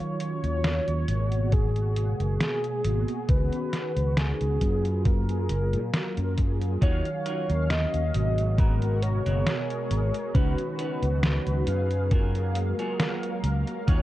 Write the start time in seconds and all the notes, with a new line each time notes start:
Already playing: D#3 F#3 C#4 F4 C#5
0.00 closed hi-hat
0.20 closed hi-hat
0.43 D#2 D#3 F#3 C#4 F4, closed hi-hat
0.64 snare, closed hi-hat
0.88 D#2, closed hi-hat
1.08 G#1 B2 G#3 A#3 F#4, closed hi-hat
1.32 closed hi-hat
1.52 G#4, kick, closed hi-hat
1.75 B2 G#3 A#3 F#4, closed hi-hat
1.97 G#4, closed hi-hat
2.20 F#1, closed hi-hat
2.40 B2 G#3 A#3 G#4, snare, closed hi-hat
2.64 closed hi-hat
2.84 G#1 B2 G#3 A#3 F#4, closed hi-hat
3.08 closed hi-hat
3.28 C#2 D#3 B3 C#4 F#4 B4, kick, closed hi-hat
3.53 closed hi-hat
3.73 snare, closed hi-hat
3.96 C#2 D#3 B3 C#4 F#4, closed hi-hat
4.17 G#4, snare, closed hi-hat
4.41 C#2, closed hi-hat
4.61 F#2 F#3 A#3 F4 G#4, kick, closed hi-hat
4.85 closed hi-hat
5.05 A#4, kick, closed hi-hat
5.28 F#3 A#3 F4 G#4, closed hi-hat
5.49 F#1, closed hi-hat
5.73 A#2, closed hi-hat
5.93 F#3 A#3 F4 A#4, snare, closed hi-hat
6.17 F#2, closed hi-hat
6.37 F#3 A#3 F4 G#4, kick, closed hi-hat
6.61 closed hi-hat
6.81 D#2 D#3 F#3 C#4 D#4 F4 F#4 C#5 F5, kick, closed hi-hat
7.05 closed hi-hat
7.26 D#4 F4 F#4 A#4, closed hi-hat
7.49 D#2 D#3 F#3 C#4 F5, closed hi-hat
7.70 D#5, snare, closed hi-hat
7.94 D#2, closed hi-hat
8.14 G#1 B2 F#3 G#3 A#3, closed hi-hat
8.38 closed hi-hat
8.58 B2 G#3 B3 F#4 G#4 A#4, kick, closed hi-hat
8.81 B2 G#3 F#4 A#4, closed hi-hat
9.02 C#5, closed hi-hat
9.25 F#1 B2 G#3 A#3 B3 F#4 G#4 A#4, closed hi-hat
9.46 B2 G#3 G#4 A#4, snare, closed hi-hat
9.70 closed hi-hat
9.91 G#1, closed hi-hat
10.14 closed hi-hat
10.34 C#2 C#3 D#3 F#3 B3 C#4 D#4 F#4 B4, kick, closed hi-hat
10.58 closed hi-hat
10.79 C#4 D#4 F#4 B4, closed hi-hat
11.02 C#2 D#3 B3 C#4 F#4, closed hi-hat
11.23 B4, snare, closed hi-hat
11.47 C#2, closed hi-hat
11.67 F#2 F#3 G#4 F5, closed hi-hat
11.91 closed hi-hat
12.11 G#3 A#3 F4 F#4 G#4 A#4, kick, closed hi-hat
12.35 F#3 A#3 G#4 F5, closed hi-hat
12.55 closed hi-hat
12.79 F#3 A#3 F4 F#4 G#4 C#5, closed hi-hat
12.99 F#3 A#3 A#4 F5, snare, closed hi-hat
13.23 closed hi-hat
13.44 C#2, closed hi-hat
13.67 closed hi-hat
13.87 D#2 D#3 F#3 C#4 D#4 F4 F#4 C#5 F5, kick, closed hi-hat